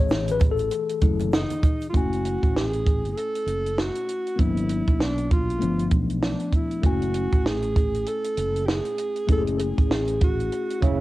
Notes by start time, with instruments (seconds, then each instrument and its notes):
Already playing: fretless electric bass A1, tine electric piano E3 A3 G#4 C#5
0.09 snare, shaker
0.28 tine electric piano B4, closed hi-hat, high conga, shaker
0.40 kick, closed hi-hat, low conga, shaker
0.51 tine electric piano A4
0.57 closed hi-hat, shaker
0.71 closed hi-hat, shaker
0.89 closed hi-hat, shaker
1.01 fretless electric bass F#1, tine electric piano F#3 A3 E4, kick, closed hi-hat, shaker
1.20 closed hi-hat, high conga, shaker
1.32 alto saxophone D#4, snare, shaker
1.50 closed hi-hat, high conga, shaker
1.63 kick, closed hi-hat, high conga, low conga, shaker
1.81 closed hi-hat, shaker
1.89 tine electric piano A3, alto saxophone F4
1.94 fretless electric bass F#1, tine electric piano C#4 E4 G#5, alto saxophone F#4, kick, closed hi-hat
2.13 closed hi-hat
2.25 closed hi-hat
2.43 fretless electric bass A1, kick, closed hi-hat
2.56 alto saxophone G#4, snare
2.73 closed hi-hat
2.86 kick, closed hi-hat
3.05 closed hi-hat
3.12 alto saxophone G#4
3.17 alto saxophone A4, closed hi-hat
3.35 closed hi-hat
3.46 fretless electric bass F#1, closed hi-hat
3.66 closed hi-hat
3.78 alto saxophone F#4, snare
3.95 closed hi-hat
4.09 closed hi-hat
4.27 closed hi-hat
4.36 fretless electric bass G#1, tine electric piano A#3 B3 D4, alto saxophone E4, kick, closed hi-hat
4.41 tine electric piano F#3
4.57 closed hi-hat
4.69 closed hi-hat
4.87 fretless electric bass B1, kick, closed hi-hat
5.00 alto saxophone D4, snare
5.18 closed hi-hat
5.31 alto saxophone F4, kick, closed hi-hat
5.50 closed hi-hat
5.59 fretless electric bass G1, tine electric piano A3 B3 D4, closed hi-hat
5.64 tine electric piano F3
5.79 closed hi-hat
5.91 fretless electric bass B1, kick, closed hi-hat
6.10 closed hi-hat
6.23 alto saxophone D4, snare
6.40 closed hi-hat
6.52 alto saxophone E4, kick, closed hi-hat
6.71 closed hi-hat
6.82 fretless electric bass F#1, tine electric piano A3 C#4 E4, alto saxophone F#4, kick, closed hi-hat
6.86 tine electric piano G#5
7.02 closed hi-hat
7.14 closed hi-hat
7.32 fretless electric bass A1, kick, closed hi-hat
7.46 alto saxophone G#4, snare
7.62 closed hi-hat
7.76 kick, closed hi-hat
7.94 closed hi-hat
8.06 alto saxophone A4, closed hi-hat
8.24 closed hi-hat
8.37 fretless electric bass F#1, closed hi-hat
8.56 closed hi-hat
8.65 alto saxophone G4, snare
8.71 alto saxophone G#4
8.85 closed hi-hat
8.98 closed hi-hat
9.16 closed hi-hat
9.27 fretless electric bass F#1, tine electric piano A3 C#4 E4, kick, closed hi-hat
9.32 tine electric piano G#4, alto saxophone A4
9.38 tine electric piano G#4
9.47 closed hi-hat
9.57 alto saxophone A4, closed hi-hat
9.62 alto saxophone G#4
9.78 fretless electric bass A1, kick, closed hi-hat
9.91 snare
10.07 closed hi-hat
10.21 alto saxophone F#4, kick, closed hi-hat
10.40 closed hi-hat
10.52 closed hi-hat
10.70 closed hi-hat
10.82 fretless electric bass F#1, tenor saxophone C#3, alto saxophone E4, kick, closed hi-hat